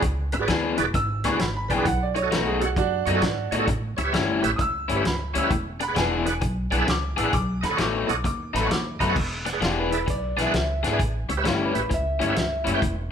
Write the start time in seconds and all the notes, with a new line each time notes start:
0.02 C#2, muted overdriven electric guitar stroke, kick, closed hi-hat
0.32 G#1 B4 E5, muted overdriven electric guitar stroke, closed hi-hat
0.39 F#4 G#4 B4 D5
0.48 D2 E3 B3 D4 G#4, snare, closed hi-hat
0.77 E1 F#4 G#4 B4 D5, muted overdriven electric guitar stroke, closed hi-hat
0.94 G#1 E6, muted overdriven electric guitar stroke, kick, closed hi-hat
1.24 D2 E3 B3 D4 G#4 B4 D5 C#6, snare, closed hi-hat
1.32 F#4 G#4 B4 D5
1.39 G#1 B5, muted overdriven electric guitar stroke, snare, closed hi-hat
1.57 B5
1.68 B1 E3 B3 D4 G#4 B4 D5 G5, kick, closed hi-hat
1.77 F#4 G#4 B4 D5
1.85 B1 F#5, muted overdriven electric guitar stroke, kick, closed hi-hat
2.03 D5
2.14 C#5 D#5, muted overdriven electric guitar stroke, closed hi-hat
2.22 F#4 A4 C#5 D#5
2.31 B1 B2 A3 D#4 F#4 B4, snare, closed hi-hat
2.47 G#4
2.60 F#4 A4 C#5 F#5, muted overdriven electric guitar stroke, closed hi-hat
2.76 F#2 D4 F#4, muted overdriven electric guitar stroke, kick, closed hi-hat
3.06 F#2 B2 A3 D#4 F#4 C#5 D#5, closed hi-hat
3.14 F#4 A4 C#5 D#5
3.22 G#2, muted overdriven electric guitar stroke, snare, closed hi-hat
3.51 A2 B2 A3 D#4 F#4 C#5 D#5, closed hi-hat
3.58 F#4 A4 C#5 D#5
3.67 A1, muted overdriven electric guitar stroke, kick, closed hi-hat
3.97 C#2 C#5 E5, muted overdriven electric guitar stroke, closed hi-hat
4.04 G4 B4 C#5 E5
4.13 G1 A2 G3 C#4 E4, snare, closed hi-hat
4.42 A1 G4 B4 C#5 E5, muted overdriven electric guitar stroke, closed hi-hat
4.56 C#2 D#6, muted overdriven electric guitar stroke, kick, closed hi-hat
4.61 E6
4.88 G1 A2 G3 C#4 E4 C#5 E5, closed hi-hat
4.95 G4 B4 C#5 E5
5.05 C#2 B5, muted overdriven electric guitar stroke, snare, closed hi-hat
5.34 D2 A2 G3 C#4 E4 C#5 E5, closed hi-hat
5.38 E6
5.43 G4 B4 C#5 E5
5.51 E1, muted overdriven electric guitar stroke, kick, closed hi-hat
5.80 D5 F#5 B5, muted overdriven electric guitar stroke, closed hi-hat
5.88 G#4 B4 D5 F#5
5.95 E1 E3 B3 D4 G#4 G#5, snare, closed hi-hat
6.25 G#4 B4 D5 F#5, muted overdriven electric guitar stroke, closed hi-hat
6.41 B1, muted overdriven electric guitar stroke, kick, closed hi-hat
6.70 B1 E3 B3 D4 G#4 D5 F#5, closed hi-hat
6.78 G#4 B4 D5 E5
6.87 C#2 D6, muted overdriven electric guitar stroke, snare, closed hi-hat
7.16 A1 E3 B3 D4 G#4 D5 F#5 E6, closed hi-hat
7.23 G#4 B4 D5 F#5
7.33 B1 D6, muted overdriven electric guitar stroke, kick, closed hi-hat
7.61 D#2 D#5 F#5 B5, muted overdriven electric guitar stroke, snare, closed hi-hat
7.69 A4 C#5 D#5 F#5
7.77 A1 B2 F#3 A3 D#4 C#6, snare, closed hi-hat
7.81 D6
8.07 B1 A4 C#5 D#5 F#5 D6, muted overdriven electric guitar stroke, closed hi-hat
8.24 D#2 D6, muted overdriven electric guitar stroke, kick, closed hi-hat
8.53 A1 B2 F#3 A3 D#4 D#5 F#5 B5, snare, closed hi-hat
8.61 A4 C#5 D#5 F#5
8.66 D#2 C#6, muted overdriven electric guitar stroke
8.71 D6, snare, closed hi-hat
8.99 F#2 B2 F#3 A3 D#4 D#5 F#5 B5, kick, snare, closed hi-hat
9.08 A4 C#5 D#5 F#5
9.16 E1, muted overdriven electric guitar stroke, kick, crash
9.45 D5 F#5, muted overdriven electric guitar stroke, snare, closed hi-hat
9.53 G#4 B4 D5 F#5
9.61 E1 E3 B3 D4 G4 G#4, snare, closed hi-hat
9.80 B4
9.91 G#4 B4 D5 E5, muted overdriven electric guitar stroke, closed hi-hat
10.07 B1 D5, muted overdriven electric guitar stroke, kick, closed hi-hat
10.37 B1 E3 B3 D4 G#4 D5 F#5, snare, closed hi-hat
10.42 G#4 E5
10.46 B4 D5 F#5
10.53 C#2 E5, muted overdriven electric guitar stroke, snare, closed hi-hat
10.83 G#1 E3 B3 D4 G#4 D5 F#5, snare, closed hi-hat
10.92 G#4 B4 D5 G#5
10.99 A1, muted overdriven electric guitar stroke, kick, closed hi-hat
11.29 C#2 C#5 E5, muted overdriven electric guitar stroke, closed hi-hat
11.37 G4 B4 C#5 E5
11.44 G1 A2 G3 C#4 E4 G4, snare, closed hi-hat
11.65 B4
11.74 A1 G4 B4 C#5 E5, muted overdriven electric guitar stroke, closed hi-hat
11.90 C#2, muted overdriven electric guitar stroke, kick, closed hi-hat
11.94 E5
12.19 G1 A2 G3 C#4 E4 C#5 E5, closed hi-hat
12.25 G4 E5
12.29 B4 C#5 E5
12.35 C#2, muted overdriven electric guitar stroke, snare, closed hi-hat
12.39 E5
12.65 F#1 A2 G3 C#4 E4 C#5 E5, closed hi-hat
12.74 G4 B4 C#5 G5
12.82 E1, muted overdriven electric guitar stroke, kick, closed hi-hat